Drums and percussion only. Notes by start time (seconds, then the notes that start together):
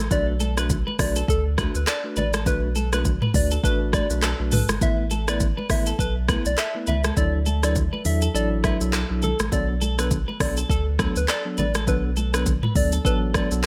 0.11 kick, low conga, shaker
0.40 high conga, shaker
0.57 cross-stick, shaker
0.70 kick, low conga, shaker
0.88 high conga
0.99 kick, cross-stick, open hi-hat, low conga, shaker
1.16 shaker
1.28 kick, shaker
1.58 kick, cross-stick, high conga, shaker
1.75 shaker
1.87 cross-stick, clap, shaker
2.16 high conga, low conga, shaker
2.33 cross-stick, high conga, shaker
2.46 kick, low conga, shaker
2.75 high conga, shaker
2.93 cross-stick, high conga, shaker
3.05 kick, low conga, shaker
3.22 mid tom, high conga
3.34 kick, open hi-hat, low conga, shaker
3.51 shaker
3.64 kick, shaker
3.93 kick, cross-stick, high conga, shaker
4.10 shaker
4.22 cross-stick, clap, shaker
4.52 mid tom, open hi-hat, high conga, low conga, shaker
4.69 cross-stick, high conga, shaker
4.81 kick, low conga, shaker
5.11 high conga, shaker
5.28 cross-stick, shaker
5.40 kick, low conga, shaker
5.58 high conga
5.70 kick, cross-stick, open hi-hat, low conga, shaker
5.86 shaker
5.99 kick, shaker
6.28 kick, cross-stick, high conga, shaker
6.45 shaker
6.58 cross-stick, clap, shaker
6.87 high conga, low conga, shaker
7.04 cross-stick, high conga, shaker
7.17 kick, low conga, shaker
7.46 high conga, shaker
7.63 cross-stick, shaker
7.75 kick, low conga, shaker
7.94 high conga
8.05 open hi-hat, low conga, shaker
8.22 shaker
8.35 shaker
8.64 kick, cross-stick, high conga, shaker
8.81 shaker
8.93 cross-stick, clap, shaker
9.22 high conga, low conga, shaker
9.39 cross-stick, high conga, shaker
9.52 kick, low conga, shaker
9.81 high conga, shaker
9.99 cross-stick, shaker
10.11 kick, low conga, shaker
10.29 high conga
10.40 kick, cross-stick, open hi-hat, low conga, shaker
10.57 shaker
10.70 kick, shaker
10.99 kick, cross-stick, high conga, shaker
11.16 shaker
11.28 cross-stick, clap, shaker
11.57 high conga, low conga, shaker
11.74 cross-stick, high conga, shaker
11.87 kick, low conga, shaker
12.16 high conga, shaker
12.34 cross-stick, shaker
12.46 kick, low conga, shaker
12.63 mid tom, high conga
12.75 kick, open hi-hat, low conga, shaker
12.92 shaker
13.05 kick, shaker
13.34 kick, cross-stick, high conga, shaker
13.51 shaker